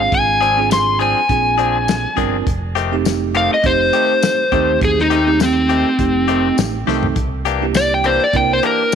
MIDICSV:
0, 0, Header, 1, 6, 480
1, 0, Start_track
1, 0, Tempo, 587659
1, 96, Time_signature, 4, 2, 24, 8
1, 7310, End_track
2, 0, Start_track
2, 0, Title_t, "Electric slide guitar"
2, 0, Program_c, 0, 29
2, 0, Note_on_c, 0, 77, 77
2, 94, Note_off_c, 0, 77, 0
2, 118, Note_on_c, 0, 80, 97
2, 573, Note_off_c, 0, 80, 0
2, 594, Note_on_c, 0, 84, 89
2, 818, Note_off_c, 0, 84, 0
2, 834, Note_on_c, 0, 80, 87
2, 1757, Note_off_c, 0, 80, 0
2, 2751, Note_on_c, 0, 77, 86
2, 2872, Note_off_c, 0, 77, 0
2, 2890, Note_on_c, 0, 75, 83
2, 2984, Note_off_c, 0, 75, 0
2, 2991, Note_on_c, 0, 72, 99
2, 3915, Note_off_c, 0, 72, 0
2, 3958, Note_on_c, 0, 68, 83
2, 4075, Note_off_c, 0, 68, 0
2, 4091, Note_on_c, 0, 63, 85
2, 4417, Note_off_c, 0, 63, 0
2, 4436, Note_on_c, 0, 60, 95
2, 5357, Note_off_c, 0, 60, 0
2, 6344, Note_on_c, 0, 74, 97
2, 6468, Note_off_c, 0, 74, 0
2, 6486, Note_on_c, 0, 79, 80
2, 6581, Note_off_c, 0, 79, 0
2, 6582, Note_on_c, 0, 72, 86
2, 6706, Note_off_c, 0, 72, 0
2, 6728, Note_on_c, 0, 74, 74
2, 6822, Note_off_c, 0, 74, 0
2, 6831, Note_on_c, 0, 79, 91
2, 6951, Note_off_c, 0, 79, 0
2, 6970, Note_on_c, 0, 72, 76
2, 7063, Note_off_c, 0, 72, 0
2, 7077, Note_on_c, 0, 70, 71
2, 7298, Note_off_c, 0, 70, 0
2, 7310, End_track
3, 0, Start_track
3, 0, Title_t, "Tine electric piano"
3, 0, Program_c, 1, 4
3, 0, Note_on_c, 1, 60, 70
3, 0, Note_on_c, 1, 62, 64
3, 0, Note_on_c, 1, 65, 62
3, 0, Note_on_c, 1, 68, 75
3, 380, Note_off_c, 1, 60, 0
3, 384, Note_off_c, 1, 62, 0
3, 385, Note_off_c, 1, 65, 0
3, 387, Note_off_c, 1, 68, 0
3, 468, Note_on_c, 1, 60, 68
3, 473, Note_on_c, 1, 62, 68
3, 479, Note_on_c, 1, 65, 67
3, 483, Note_on_c, 1, 68, 85
3, 987, Note_off_c, 1, 60, 0
3, 989, Note_off_c, 1, 62, 0
3, 992, Note_off_c, 1, 65, 0
3, 994, Note_off_c, 1, 68, 0
3, 1054, Note_on_c, 1, 60, 69
3, 1057, Note_on_c, 1, 62, 66
3, 1062, Note_on_c, 1, 65, 60
3, 1067, Note_on_c, 1, 68, 77
3, 1692, Note_off_c, 1, 60, 0
3, 1693, Note_off_c, 1, 62, 0
3, 1696, Note_off_c, 1, 65, 0
3, 1699, Note_off_c, 1, 68, 0
3, 1763, Note_on_c, 1, 60, 74
3, 1766, Note_on_c, 1, 62, 77
3, 1774, Note_on_c, 1, 65, 69
3, 1777, Note_on_c, 1, 70, 90
3, 2009, Note_off_c, 1, 60, 0
3, 2011, Note_off_c, 1, 62, 0
3, 2015, Note_off_c, 1, 65, 0
3, 2017, Note_off_c, 1, 70, 0
3, 2382, Note_on_c, 1, 57, 79
3, 2388, Note_on_c, 1, 60, 78
3, 2392, Note_on_c, 1, 63, 76
3, 2394, Note_on_c, 1, 67, 89
3, 2904, Note_off_c, 1, 57, 0
3, 2907, Note_off_c, 1, 60, 0
3, 2909, Note_off_c, 1, 63, 0
3, 2910, Note_off_c, 1, 67, 0
3, 2967, Note_on_c, 1, 57, 76
3, 2972, Note_on_c, 1, 60, 72
3, 2977, Note_on_c, 1, 63, 66
3, 2985, Note_on_c, 1, 67, 84
3, 3608, Note_off_c, 1, 57, 0
3, 3611, Note_off_c, 1, 60, 0
3, 3613, Note_off_c, 1, 63, 0
3, 3618, Note_off_c, 1, 67, 0
3, 3692, Note_on_c, 1, 57, 89
3, 3693, Note_on_c, 1, 60, 83
3, 3699, Note_on_c, 1, 63, 80
3, 3704, Note_on_c, 1, 67, 91
3, 4221, Note_off_c, 1, 57, 0
3, 4222, Note_off_c, 1, 60, 0
3, 4224, Note_off_c, 1, 63, 0
3, 4227, Note_off_c, 1, 67, 0
3, 4304, Note_on_c, 1, 57, 74
3, 4307, Note_on_c, 1, 60, 67
3, 4310, Note_on_c, 1, 63, 68
3, 4315, Note_on_c, 1, 67, 77
3, 4825, Note_off_c, 1, 57, 0
3, 4826, Note_off_c, 1, 60, 0
3, 4828, Note_off_c, 1, 63, 0
3, 4830, Note_off_c, 1, 67, 0
3, 4885, Note_on_c, 1, 57, 70
3, 4890, Note_on_c, 1, 60, 63
3, 4893, Note_on_c, 1, 63, 67
3, 4901, Note_on_c, 1, 67, 78
3, 5135, Note_on_c, 1, 75, 61
3, 5358, Note_off_c, 1, 75, 0
3, 5368, Note_on_c, 1, 79, 61
3, 5527, Note_off_c, 1, 57, 0
3, 5529, Note_off_c, 1, 60, 0
3, 5531, Note_off_c, 1, 63, 0
3, 5535, Note_off_c, 1, 67, 0
3, 5603, Note_on_c, 1, 57, 77
3, 5609, Note_on_c, 1, 60, 68
3, 5611, Note_on_c, 1, 63, 70
3, 5615, Note_on_c, 1, 69, 86
3, 5819, Note_off_c, 1, 79, 0
3, 5849, Note_off_c, 1, 57, 0
3, 5852, Note_off_c, 1, 60, 0
3, 5853, Note_off_c, 1, 63, 0
3, 5855, Note_off_c, 1, 69, 0
3, 6216, Note_on_c, 1, 58, 72
3, 6223, Note_on_c, 1, 62, 63
3, 6228, Note_on_c, 1, 67, 81
3, 6229, Note_on_c, 1, 64, 62
3, 6740, Note_off_c, 1, 58, 0
3, 6743, Note_off_c, 1, 62, 0
3, 6746, Note_off_c, 1, 64, 0
3, 6746, Note_off_c, 1, 67, 0
3, 6805, Note_on_c, 1, 58, 78
3, 6808, Note_on_c, 1, 62, 72
3, 6813, Note_on_c, 1, 64, 73
3, 6819, Note_on_c, 1, 70, 82
3, 7310, Note_off_c, 1, 58, 0
3, 7310, Note_off_c, 1, 62, 0
3, 7310, Note_off_c, 1, 64, 0
3, 7310, Note_off_c, 1, 70, 0
3, 7310, End_track
4, 0, Start_track
4, 0, Title_t, "Clean electric guitar"
4, 0, Program_c, 2, 27
4, 332, Note_on_c, 2, 68, 67
4, 336, Note_on_c, 2, 62, 65
4, 342, Note_on_c, 2, 60, 55
4, 345, Note_on_c, 2, 53, 53
4, 487, Note_off_c, 2, 68, 0
4, 490, Note_off_c, 2, 62, 0
4, 493, Note_off_c, 2, 60, 0
4, 494, Note_off_c, 2, 53, 0
4, 813, Note_on_c, 2, 68, 67
4, 821, Note_on_c, 2, 62, 63
4, 825, Note_on_c, 2, 60, 59
4, 829, Note_on_c, 2, 53, 53
4, 968, Note_off_c, 2, 68, 0
4, 972, Note_off_c, 2, 62, 0
4, 974, Note_off_c, 2, 60, 0
4, 976, Note_off_c, 2, 53, 0
4, 1288, Note_on_c, 2, 68, 61
4, 1294, Note_on_c, 2, 62, 65
4, 1301, Note_on_c, 2, 60, 57
4, 1305, Note_on_c, 2, 53, 55
4, 1445, Note_off_c, 2, 68, 0
4, 1449, Note_off_c, 2, 62, 0
4, 1452, Note_off_c, 2, 60, 0
4, 1454, Note_off_c, 2, 53, 0
4, 1770, Note_on_c, 2, 68, 69
4, 1777, Note_on_c, 2, 62, 58
4, 1781, Note_on_c, 2, 60, 67
4, 1785, Note_on_c, 2, 53, 60
4, 1927, Note_off_c, 2, 68, 0
4, 1930, Note_off_c, 2, 62, 0
4, 1932, Note_off_c, 2, 60, 0
4, 1934, Note_off_c, 2, 53, 0
4, 2249, Note_on_c, 2, 67, 80
4, 2252, Note_on_c, 2, 60, 73
4, 2258, Note_on_c, 2, 57, 69
4, 2264, Note_on_c, 2, 51, 68
4, 2406, Note_off_c, 2, 67, 0
4, 2408, Note_off_c, 2, 60, 0
4, 2411, Note_off_c, 2, 57, 0
4, 2414, Note_off_c, 2, 51, 0
4, 2733, Note_on_c, 2, 67, 72
4, 2741, Note_on_c, 2, 60, 69
4, 2743, Note_on_c, 2, 57, 60
4, 2747, Note_on_c, 2, 51, 58
4, 2888, Note_off_c, 2, 67, 0
4, 2892, Note_off_c, 2, 60, 0
4, 2893, Note_off_c, 2, 57, 0
4, 2895, Note_off_c, 2, 51, 0
4, 3213, Note_on_c, 2, 67, 67
4, 3221, Note_on_c, 2, 60, 60
4, 3226, Note_on_c, 2, 57, 58
4, 3228, Note_on_c, 2, 51, 58
4, 3368, Note_off_c, 2, 67, 0
4, 3372, Note_off_c, 2, 60, 0
4, 3375, Note_off_c, 2, 57, 0
4, 3376, Note_off_c, 2, 51, 0
4, 3692, Note_on_c, 2, 67, 66
4, 3694, Note_on_c, 2, 60, 69
4, 3702, Note_on_c, 2, 57, 63
4, 3705, Note_on_c, 2, 51, 58
4, 3847, Note_off_c, 2, 67, 0
4, 3849, Note_off_c, 2, 60, 0
4, 3853, Note_off_c, 2, 57, 0
4, 3854, Note_off_c, 2, 51, 0
4, 4167, Note_on_c, 2, 67, 77
4, 4174, Note_on_c, 2, 60, 69
4, 4180, Note_on_c, 2, 57, 61
4, 4182, Note_on_c, 2, 51, 62
4, 4325, Note_off_c, 2, 67, 0
4, 4328, Note_off_c, 2, 60, 0
4, 4332, Note_off_c, 2, 57, 0
4, 4333, Note_off_c, 2, 51, 0
4, 4649, Note_on_c, 2, 67, 65
4, 4654, Note_on_c, 2, 60, 65
4, 4660, Note_on_c, 2, 57, 54
4, 4665, Note_on_c, 2, 51, 55
4, 4806, Note_off_c, 2, 67, 0
4, 4809, Note_off_c, 2, 60, 0
4, 4812, Note_off_c, 2, 57, 0
4, 4814, Note_off_c, 2, 51, 0
4, 5128, Note_on_c, 2, 67, 75
4, 5136, Note_on_c, 2, 60, 69
4, 5140, Note_on_c, 2, 57, 67
4, 5145, Note_on_c, 2, 51, 58
4, 5286, Note_off_c, 2, 67, 0
4, 5289, Note_off_c, 2, 60, 0
4, 5291, Note_off_c, 2, 57, 0
4, 5294, Note_off_c, 2, 51, 0
4, 5613, Note_on_c, 2, 67, 67
4, 5619, Note_on_c, 2, 60, 62
4, 5622, Note_on_c, 2, 57, 63
4, 5626, Note_on_c, 2, 51, 60
4, 5768, Note_off_c, 2, 67, 0
4, 5770, Note_off_c, 2, 60, 0
4, 5772, Note_off_c, 2, 57, 0
4, 5774, Note_off_c, 2, 51, 0
4, 6088, Note_on_c, 2, 67, 79
4, 6096, Note_on_c, 2, 62, 75
4, 6100, Note_on_c, 2, 58, 69
4, 6104, Note_on_c, 2, 52, 61
4, 6245, Note_off_c, 2, 67, 0
4, 6249, Note_off_c, 2, 62, 0
4, 6251, Note_off_c, 2, 58, 0
4, 6253, Note_off_c, 2, 52, 0
4, 6568, Note_on_c, 2, 67, 63
4, 6574, Note_on_c, 2, 62, 58
4, 6578, Note_on_c, 2, 58, 59
4, 6583, Note_on_c, 2, 52, 58
4, 6725, Note_off_c, 2, 67, 0
4, 6728, Note_off_c, 2, 62, 0
4, 6730, Note_off_c, 2, 58, 0
4, 6732, Note_off_c, 2, 52, 0
4, 7050, Note_on_c, 2, 67, 65
4, 7057, Note_on_c, 2, 62, 69
4, 7062, Note_on_c, 2, 58, 62
4, 7065, Note_on_c, 2, 52, 56
4, 7205, Note_off_c, 2, 67, 0
4, 7209, Note_off_c, 2, 62, 0
4, 7211, Note_off_c, 2, 58, 0
4, 7213, Note_off_c, 2, 52, 0
4, 7310, End_track
5, 0, Start_track
5, 0, Title_t, "Fingered electric bass"
5, 0, Program_c, 3, 33
5, 99, Note_on_c, 3, 32, 99
5, 926, Note_off_c, 3, 32, 0
5, 1055, Note_on_c, 3, 34, 83
5, 1677, Note_off_c, 3, 34, 0
5, 1777, Note_on_c, 3, 31, 87
5, 1984, Note_off_c, 3, 31, 0
5, 2015, Note_on_c, 3, 29, 93
5, 2844, Note_off_c, 3, 29, 0
5, 2973, Note_on_c, 3, 29, 87
5, 3182, Note_off_c, 3, 29, 0
5, 3694, Note_on_c, 3, 39, 96
5, 3902, Note_off_c, 3, 39, 0
5, 3934, Note_on_c, 3, 39, 90
5, 4763, Note_off_c, 3, 39, 0
5, 4893, Note_on_c, 3, 29, 86
5, 5308, Note_off_c, 3, 29, 0
5, 5376, Note_on_c, 3, 33, 84
5, 5591, Note_off_c, 3, 33, 0
5, 5615, Note_on_c, 3, 36, 81
5, 5831, Note_off_c, 3, 36, 0
5, 5850, Note_on_c, 3, 36, 106
5, 6680, Note_off_c, 3, 36, 0
5, 6810, Note_on_c, 3, 36, 91
5, 7018, Note_off_c, 3, 36, 0
5, 7310, End_track
6, 0, Start_track
6, 0, Title_t, "Drums"
6, 99, Note_on_c, 9, 36, 103
6, 101, Note_on_c, 9, 42, 72
6, 181, Note_off_c, 9, 36, 0
6, 183, Note_off_c, 9, 42, 0
6, 346, Note_on_c, 9, 42, 58
6, 427, Note_off_c, 9, 42, 0
6, 581, Note_on_c, 9, 42, 72
6, 581, Note_on_c, 9, 54, 94
6, 588, Note_on_c, 9, 38, 91
6, 663, Note_off_c, 9, 42, 0
6, 663, Note_off_c, 9, 54, 0
6, 670, Note_off_c, 9, 38, 0
6, 820, Note_on_c, 9, 42, 52
6, 902, Note_off_c, 9, 42, 0
6, 1056, Note_on_c, 9, 36, 74
6, 1056, Note_on_c, 9, 42, 73
6, 1138, Note_off_c, 9, 36, 0
6, 1138, Note_off_c, 9, 42, 0
6, 1297, Note_on_c, 9, 42, 61
6, 1378, Note_off_c, 9, 42, 0
6, 1538, Note_on_c, 9, 42, 83
6, 1538, Note_on_c, 9, 54, 99
6, 1545, Note_on_c, 9, 38, 110
6, 1619, Note_off_c, 9, 42, 0
6, 1619, Note_off_c, 9, 54, 0
6, 1627, Note_off_c, 9, 38, 0
6, 1776, Note_on_c, 9, 36, 69
6, 1778, Note_on_c, 9, 42, 63
6, 1858, Note_off_c, 9, 36, 0
6, 1859, Note_off_c, 9, 42, 0
6, 2015, Note_on_c, 9, 36, 107
6, 2016, Note_on_c, 9, 42, 80
6, 2097, Note_off_c, 9, 36, 0
6, 2098, Note_off_c, 9, 42, 0
6, 2259, Note_on_c, 9, 42, 67
6, 2340, Note_off_c, 9, 42, 0
6, 2494, Note_on_c, 9, 42, 79
6, 2494, Note_on_c, 9, 54, 101
6, 2502, Note_on_c, 9, 38, 89
6, 2576, Note_off_c, 9, 42, 0
6, 2576, Note_off_c, 9, 54, 0
6, 2583, Note_off_c, 9, 38, 0
6, 2733, Note_on_c, 9, 42, 64
6, 2814, Note_off_c, 9, 42, 0
6, 2969, Note_on_c, 9, 42, 78
6, 2972, Note_on_c, 9, 36, 81
6, 3051, Note_off_c, 9, 42, 0
6, 3054, Note_off_c, 9, 36, 0
6, 3210, Note_on_c, 9, 42, 61
6, 3292, Note_off_c, 9, 42, 0
6, 3451, Note_on_c, 9, 42, 80
6, 3451, Note_on_c, 9, 54, 111
6, 3458, Note_on_c, 9, 38, 108
6, 3533, Note_off_c, 9, 42, 0
6, 3533, Note_off_c, 9, 54, 0
6, 3540, Note_off_c, 9, 38, 0
6, 3691, Note_on_c, 9, 42, 54
6, 3692, Note_on_c, 9, 36, 71
6, 3773, Note_off_c, 9, 42, 0
6, 3774, Note_off_c, 9, 36, 0
6, 3932, Note_on_c, 9, 36, 110
6, 3932, Note_on_c, 9, 42, 80
6, 4013, Note_off_c, 9, 42, 0
6, 4014, Note_off_c, 9, 36, 0
6, 4074, Note_on_c, 9, 38, 31
6, 4155, Note_off_c, 9, 38, 0
6, 4172, Note_on_c, 9, 42, 60
6, 4254, Note_off_c, 9, 42, 0
6, 4411, Note_on_c, 9, 42, 67
6, 4411, Note_on_c, 9, 54, 98
6, 4418, Note_on_c, 9, 38, 103
6, 4493, Note_off_c, 9, 42, 0
6, 4493, Note_off_c, 9, 54, 0
6, 4500, Note_off_c, 9, 38, 0
6, 4652, Note_on_c, 9, 42, 58
6, 4733, Note_off_c, 9, 42, 0
6, 4891, Note_on_c, 9, 36, 74
6, 4891, Note_on_c, 9, 42, 74
6, 4973, Note_off_c, 9, 36, 0
6, 4973, Note_off_c, 9, 42, 0
6, 5132, Note_on_c, 9, 42, 55
6, 5214, Note_off_c, 9, 42, 0
6, 5373, Note_on_c, 9, 42, 75
6, 5373, Note_on_c, 9, 54, 106
6, 5380, Note_on_c, 9, 38, 113
6, 5455, Note_off_c, 9, 42, 0
6, 5455, Note_off_c, 9, 54, 0
6, 5462, Note_off_c, 9, 38, 0
6, 5618, Note_on_c, 9, 38, 63
6, 5700, Note_off_c, 9, 38, 0
6, 5740, Note_on_c, 9, 43, 77
6, 5822, Note_off_c, 9, 43, 0
6, 5846, Note_on_c, 9, 42, 85
6, 5849, Note_on_c, 9, 36, 113
6, 5928, Note_off_c, 9, 42, 0
6, 5931, Note_off_c, 9, 36, 0
6, 6090, Note_on_c, 9, 42, 65
6, 6172, Note_off_c, 9, 42, 0
6, 6326, Note_on_c, 9, 42, 73
6, 6326, Note_on_c, 9, 54, 97
6, 6333, Note_on_c, 9, 38, 90
6, 6407, Note_off_c, 9, 42, 0
6, 6407, Note_off_c, 9, 54, 0
6, 6415, Note_off_c, 9, 38, 0
6, 6567, Note_on_c, 9, 42, 61
6, 6648, Note_off_c, 9, 42, 0
6, 6807, Note_on_c, 9, 42, 78
6, 6808, Note_on_c, 9, 36, 75
6, 6888, Note_off_c, 9, 42, 0
6, 6890, Note_off_c, 9, 36, 0
6, 7048, Note_on_c, 9, 42, 59
6, 7130, Note_off_c, 9, 42, 0
6, 7310, End_track
0, 0, End_of_file